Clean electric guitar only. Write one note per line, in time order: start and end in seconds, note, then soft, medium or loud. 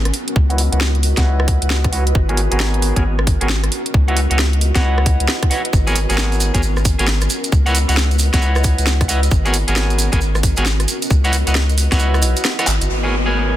0.50 0.61 E4 medium
0.50 0.61 B4 medium
0.50 0.61 C#5 medium
0.50 0.61 D#5 medium
0.50 0.61 F#5 loud
0.72 0.78 E4 medium
0.72 0.78 B4 medium
0.72 0.78 C#5 medium
0.72 0.79 D#5 medium
0.72 0.78 F#5 medium
1.17 1.91 E4 medium
1.17 1.91 B4 medium
1.17 1.91 C#5 medium
1.17 1.91 D#5 medium
1.17 1.91 F#5 medium
1.92 2.03 E4 medium
1.92 2.03 B4 medium
1.92 2.03 C#5 medium
1.92 2.03 D#5 medium
1.92 2.03 F#5 medium
2.29 2.40 B3 medium
2.29 2.40 F#4 medium
2.29 2.40 G#4 medium
2.29 2.40 A#4 medium
2.29 2.40 C#5 medium
2.51 2.93 B3 medium
2.51 2.93 F#4 medium
2.51 2.93 G#4 medium
2.51 2.93 A#4 medium
2.51 2.93 C#5 medium
2.96 3.02 B3 medium
2.96 3.02 F#4 medium
2.96 3.02 G#4 medium
2.96 3.02 A#4 medium
2.96 3.02 C#5 medium
3.41 3.47 B3 medium
3.41 3.47 F#4 medium
3.41 3.47 G#4 medium
3.41 3.47 A#4 medium
3.41 3.47 C#5 loud
4.08 4.19 E4 medium
4.08 4.19 B4 medium
4.08 4.19 C#5 medium
4.08 4.19 D#5 medium
4.08 4.19 F#5 loud
4.30 4.37 E4 medium
4.30 4.37 B4 medium
4.30 4.37 C#5 medium
4.30 4.37 D#5 medium
4.30 4.37 F#5 medium
4.75 5.49 E4 medium
4.75 5.49 B4 medium
4.75 5.49 C#5 medium
4.75 5.49 D#5 medium
4.75 5.49 F#5 medium
5.50 5.61 E4 medium
5.50 5.61 B4 medium
5.50 5.61 C#5 medium
5.50 5.61 D#5 medium
5.50 5.61 F#5 medium
5.87 5.98 B3 medium
5.87 5.98 F#4 medium
5.87 5.98 G#4 medium
5.87 5.98 A#4 medium
5.87 5.98 C#5 loud
6.09 6.51 B3 medium
6.09 6.51 F#4 medium
6.09 6.51 G#4 medium
6.09 6.51 A#4 medium
6.09 6.51 C#5 medium
6.54 6.61 B3 medium
6.54 6.61 F#4 medium
6.54 6.61 G#4 medium
6.54 6.61 A#4 medium
6.54 6.61 C#5 medium
6.99 7.05 B3 medium
6.99 7.05 F#4 medium
6.99 7.05 G#4 medium
6.99 7.05 A#4 medium
6.99 7.05 C#5 loud
7.66 7.77 E4 medium
7.66 7.77 B4 medium
7.66 7.77 C#5 medium
7.66 7.77 D#5 medium
7.66 7.77 F#5 loud
7.88 7.95 E4 medium
7.88 7.95 B4 medium
7.88 7.95 C#5 medium
7.88 7.95 D#5 medium
7.88 7.95 F#5 medium
8.33 9.07 E4 medium
8.33 9.07 B4 medium
8.33 9.07 C#5 medium
8.33 9.07 D#5 medium
8.33 9.07 F#5 medium
9.08 9.19 E4 medium
9.08 9.19 B4 medium
9.08 9.19 C#5 medium
9.08 9.19 D#5 medium
9.08 9.19 F#5 medium
9.45 9.56 B3 medium
9.45 9.56 F#4 medium
9.45 9.56 G#4 medium
9.45 9.56 A#4 medium
9.45 9.56 C#5 medium
9.68 10.09 B3 medium
9.68 10.09 F#4 medium
9.68 10.09 G#4 medium
9.68 10.09 A#4 medium
9.68 10.09 C#5 medium
10.12 10.19 B3 medium
10.12 10.19 F#4 medium
10.12 10.19 G#4 medium
10.12 10.19 A#4 medium
10.12 10.19 C#5 medium
10.57 10.64 B3 medium
10.57 10.64 F#4 medium
10.57 10.64 G#4 medium
10.57 10.64 A#4 medium
10.57 10.64 C#5 loud
11.24 11.35 E4 medium
11.24 11.35 B4 medium
11.24 11.35 C#5 medium
11.24 11.35 D#5 medium
11.24 11.35 F#5 loud
11.47 11.53 E4 medium
11.47 11.53 B4 medium
11.47 11.53 C#5 medium
11.47 11.53 D#5 medium
11.47 11.53 F#5 medium
11.91 12.56 E4 medium
11.91 12.56 B4 medium
11.91 12.56 C#5 medium
11.91 12.56 D#5 medium
11.91 12.56 F#5 medium
12.59 12.65 E4 medium
12.59 12.65 B4 medium
12.59 12.65 C#5 medium
12.59 12.65 D#5 medium
12.59 12.65 F#5 loud
13.03 13.15 B3 medium
13.03 13.15 F#4 medium
13.03 13.15 G#4 medium
13.03 13.15 A#4 medium
13.03 13.15 C#5 medium
13.26 13.57 B3 medium
13.26 13.57 F#4 medium
13.26 13.57 G#4 medium
13.26 13.57 A#4 medium
13.26 13.57 C#5 medium